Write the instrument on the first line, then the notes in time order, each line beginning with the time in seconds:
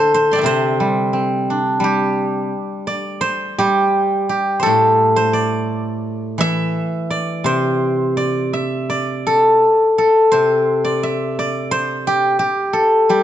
guzheng
Already playing: D3 A4 C5 D5 E5
0.14 C5
0.31 D5 A5 C6
0.35 E5 G5
0.41 C3 D5
0.46 C5
0.80 G3
1.13 C4
1.50 D4
1.80 G3
1.84 G4
2.87 D5
3.21 C5
3.58 G3 G4
4.29 G4
4.60 A4 C5
4.66 A2
5.16 C5
5.33 D5
6.38 E3 E5
7.10 D5
7.44 C3 C5
8.17 D5
8.53 E5
8.90 D5
9.27 A4
9.98 A4
10.32 C3 C5
10.85 D5
11.03 E5
11.39 D5
11.71 C5
12.07 G4
12.39 G4
12.73 A4
13.09 G3 G4